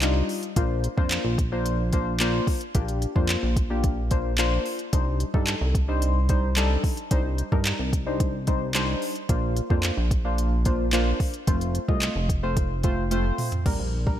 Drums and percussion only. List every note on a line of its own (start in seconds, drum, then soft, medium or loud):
0.02 clap loud
0.02 closed hi-hat loud
0.29 open hi-hat medium
0.43 closed hi-hat soft
0.56 kick loud
0.56 closed hi-hat loud
0.84 closed hi-hat medium
0.98 kick loud
1.11 clap loud
1.11 closed hi-hat loud
1.38 kick loud
1.38 closed hi-hat medium
1.66 closed hi-hat medium
1.93 kick medium
1.93 closed hi-hat medium
2.20 clap loud
2.20 closed hi-hat medium
2.47 kick medium
2.47 open hi-hat medium
2.61 closed hi-hat soft
2.75 kick loud
2.75 closed hi-hat loud
2.88 closed hi-hat medium
3.02 closed hi-hat medium
3.16 kick loud
3.29 clap loud
3.29 closed hi-hat medium
3.56 kick loud
3.56 closed hi-hat medium
3.84 kick loud
3.84 closed hi-hat medium
4.11 kick loud
4.11 closed hi-hat medium
4.38 clap loud
4.38 closed hi-hat loud
4.66 open hi-hat medium
4.79 closed hi-hat medium
4.93 kick loud
4.93 closed hi-hat loud
5.20 closed hi-hat medium
5.34 kick loud
5.47 clap loud
5.47 closed hi-hat medium
5.75 kick loud
5.75 closed hi-hat medium
6.02 closed hi-hat medium
6.29 kick medium
6.29 closed hi-hat medium
6.57 clap loud
6.57 closed hi-hat medium
6.84 kick medium
6.84 open hi-hat medium
6.97 closed hi-hat soft
7.11 kick loud
7.11 closed hi-hat loud
7.38 closed hi-hat medium
7.52 kick loud
7.65 clap loud
7.65 closed hi-hat medium
7.93 kick loud
7.93 closed hi-hat medium
8.20 kick loud
8.20 closed hi-hat medium
8.47 kick loud
8.47 closed hi-hat medium
8.75 clap loud
8.75 closed hi-hat medium
9.02 open hi-hat medium
9.15 closed hi-hat soft
9.29 kick loud
9.29 closed hi-hat loud
9.57 closed hi-hat medium
9.70 kick loud
9.83 clap loud
9.83 closed hi-hat medium
10.11 kick loud
10.11 closed hi-hat medium
10.38 closed hi-hat medium
10.65 kick medium
10.65 closed hi-hat medium
10.93 clap loud
10.93 closed hi-hat loud
11.20 kick medium
11.20 open hi-hat medium
11.34 closed hi-hat medium
11.47 kick loud
11.47 closed hi-hat loud
11.61 closed hi-hat medium
11.75 closed hi-hat medium
11.89 kick loud
12.02 clap loud
12.02 closed hi-hat loud
12.29 kick loud
12.29 closed hi-hat medium
12.57 kick loud
12.57 closed hi-hat medium
12.83 kick medium
12.83 closed hi-hat medium
13.11 closed hi-hat loud
13.11 high tom medium
13.38 mid tom loud
13.38 open hi-hat medium
13.52 closed hi-hat soft
13.52 floor tom loud
13.66 kick loud
13.66 crash medium
14.07 kick loud